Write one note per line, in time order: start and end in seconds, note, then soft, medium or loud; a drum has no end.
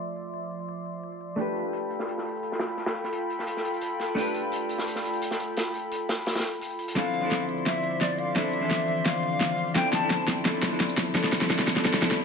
0.00 1.35 F3 medium
0.00 1.35 A3 medium
0.00 1.36 D4 medium
0.00 1.37 F4 medium
0.00 1.38 C5 medium
0.00 1.35 D5 medium
0.00 1.35 E5 medium
0.00 1.35 C6 medium
0.16 closed hi-hat medium
0.34 closed hi-hat medium
0.51 open hi-hat medium
0.60 closed hi-hat soft
0.69 closed hi-hat medium
0.86 closed hi-hat medium
1.03 closed hi-hat medium
1.12 closed hi-hat soft
1.21 closed hi-hat medium
1.36 4.14 A3 medium
1.36 4.15 D4 medium
1.36 6.93 F4 medium
1.36 4.16 G4 medium
1.36 6.93 A4 medium
1.36 6.93 G5 medium
1.36 6.93 B5 medium
1.36 closed hi-hat medium
1.41 4.17 B4 medium
1.47 closed hi-hat soft
1.55 closed hi-hat medium
1.73 closed hi-hat medium
1.90 closed hi-hat medium
1.99 snare soft
1.99 closed hi-hat soft
2.08 closed hi-hat medium
2.18 snare soft
2.26 closed hi-hat medium
2.35 closed hi-hat soft
2.43 closed hi-hat medium
2.52 snare soft
2.52 closed hi-hat soft
2.59 snare loud
2.59 closed hi-hat medium
2.77 snare soft
2.77 closed hi-hat medium
2.86 snare loud
2.86 closed hi-hat medium
2.95 closed hi-hat medium
3.04 snare soft
3.04 closed hi-hat medium
3.13 closed hi-hat medium
3.30 closed hi-hat medium
3.30 open hi-hat medium
3.39 snare soft
3.39 closed hi-hat soft
3.47 closed hi-hat medium
3.57 snare soft
3.65 closed hi-hat medium
3.74 closed hi-hat soft
3.81 closed hi-hat medium
3.91 closed hi-hat soft
4.00 snare soft
4.00 closed hi-hat medium
4.15 6.93 A3 medium
4.15 6.94 D4 medium
4.15 6.95 G4 medium
4.15 closed hi-hat medium
4.20 6.96 B4 medium
4.26 closed hi-hat soft
4.35 closed hi-hat medium
4.52 closed hi-hat medium
4.69 closed hi-hat medium
4.78 snare soft
4.78 closed hi-hat soft
4.87 closed hi-hat medium
4.95 snare soft
5.04 closed hi-hat medium
5.13 closed hi-hat soft
5.22 closed hi-hat medium
5.31 snare medium
5.31 closed hi-hat soft
5.39 closed hi-hat medium
5.57 snare medium
5.57 closed hi-hat medium
5.74 closed hi-hat medium
5.92 closed hi-hat medium
6.09 snare medium
6.09 closed hi-hat medium
6.09 open hi-hat medium
6.18 closed hi-hat soft
6.27 snare loud
6.27 closed hi-hat medium
6.35 snare medium
6.35 closed hi-hat medium
6.35 closed hi-hat soft
6.39 snare medium
6.39 closed hi-hat medium
6.44 closed hi-hat medium
6.52 closed hi-hat soft
6.62 closed hi-hat medium
6.70 closed hi-hat soft
6.79 closed hi-hat medium
6.88 closed hi-hat medium
6.95 12.16 D3 medium
6.95 7.19 F3 medium
6.95 7.20 C4 medium
6.95 7.21 D4 medium
6.95 7.21 E4 medium
6.95 7.21 A4 medium
6.95 12.16 C5 medium
6.95 12.16 D5 medium
6.95 7.45 F5 medium
6.95 12.16 C6 medium
6.95 snare soft
6.95 closed hi-hat medium
7.14 closed hi-hat medium
7.20 8.33 F3 medium
7.20 8.33 C4 medium
7.20 8.34 D4 medium
7.20 8.35 E4 medium
7.25 8.35 A4 medium
7.31 snare soft
7.31 closed hi-hat medium
7.49 closed hi-hat medium
7.58 closed hi-hat soft
7.66 8.03 E5 medium
7.66 snare soft
7.66 closed hi-hat medium
7.84 closed hi-hat medium
8.01 8.20 D5 medium
8.01 snare medium
8.01 closed hi-hat medium
8.10 closed hi-hat soft
8.19 8.38 F5 medium
8.19 closed hi-hat medium
8.35 8.59 F3 medium
8.35 8.60 C4 medium
8.35 8.60 D4 medium
8.35 8.61 E4 medium
8.35 8.61 A4 medium
8.35 9.08 E5 loud
8.35 snare medium
8.35 closed hi-hat medium
8.53 closed hi-hat medium
8.60 9.74 E3 medium
8.60 9.72 F3 medium
8.60 9.73 C4 medium
8.60 9.74 D4 medium
8.65 9.75 A4 medium
8.71 snare medium
8.71 closed hi-hat medium
8.88 closed hi-hat medium
8.97 closed hi-hat soft
9.06 9.75 F5 loud
9.06 snare medium
9.06 closed hi-hat medium
9.23 closed hi-hat medium
9.41 snare medium
9.41 closed hi-hat medium
9.50 closed hi-hat soft
9.58 closed hi-hat medium
9.74 9.98 F3 medium
9.74 9.99 C4 medium
9.74 10.00 D4 medium
9.74 10.00 E4 medium
9.74 10.00 A4 medium
9.74 9.92 G5 loud
9.74 snare medium
9.74 closed hi-hat medium
9.93 10.26 A5 loud
9.93 snare medium
9.93 closed hi-hat medium
9.93 shaker medium
9.99 10.43 F3 medium
9.99 10.43 C4 medium
9.99 10.44 D4 medium
9.99 10.45 E4 medium
10.04 10.45 A4 medium
10.10 snare medium
10.10 closed hi-hat medium
10.10 shaker soft
10.28 snare medium
10.28 closed hi-hat medium
10.28 shaker medium
10.37 closed hi-hat soft
10.44 10.68 F3 medium
10.44 10.69 C4 medium
10.44 10.70 D4 medium
10.44 10.70 E4 medium
10.44 10.70 A4 medium
10.44 snare medium
10.44 closed hi-hat medium
10.63 snare medium
10.63 closed hi-hat medium
10.63 shaker medium
10.69 11.13 F3 medium
10.69 11.13 C4 medium
10.69 11.14 D4 medium
10.69 11.14 E4 medium
10.74 11.15 A4 medium
10.80 snare medium
10.80 closed hi-hat medium
10.89 closed hi-hat soft
10.89 shaker soft
10.98 snare medium
10.98 closed hi-hat medium
10.98 shaker medium
11.14 11.38 F3 medium
11.14 11.39 C4 medium
11.14 11.39 D4 medium
11.14 11.40 E4 medium
11.14 11.40 A4 loud
11.14 snare loud
11.14 closed hi-hat medium
11.24 snare medium
11.33 snare medium
11.33 closed hi-hat medium
11.33 shaker medium
11.39 11.48 F3 medium
11.39 11.48 C4 medium
11.39 11.49 E4 medium
11.39 snare medium
11.44 11.50 A4 medium
11.49 11.73 F3 medium
11.49 11.74 C4 medium
11.49 11.74 D4 medium
11.49 11.75 E4 medium
11.49 11.75 A4 medium
11.49 snare loud
11.49 closed hi-hat medium
11.49 shaker soft
11.59 snare medium
11.68 snare loud
11.68 closed hi-hat medium
11.68 shaker medium
11.74 11.82 F3 medium
11.74 11.83 C4 medium
11.74 11.84 D4 medium
11.74 11.84 E4 medium
11.74 snare medium
11.74 closed hi-hat soft
11.79 11.85 A4 medium
11.83 12.00 F3 medium
11.83 12.01 C4 medium
11.83 12.01 D4 medium
11.83 12.01 E4 medium
11.83 12.02 A4 loud
11.83 snare loud
11.83 closed hi-hat medium
11.94 snare medium
11.94 closed hi-hat soft
12.01 12.18 F3 medium
12.01 12.18 C4 medium
12.01 12.18 D4 medium
12.01 12.19 E4 medium
12.01 12.19 A4 loud
12.01 snare loud
12.01 closed hi-hat medium
12.01 shaker medium
12.11 snare medium
12.11 shaker soft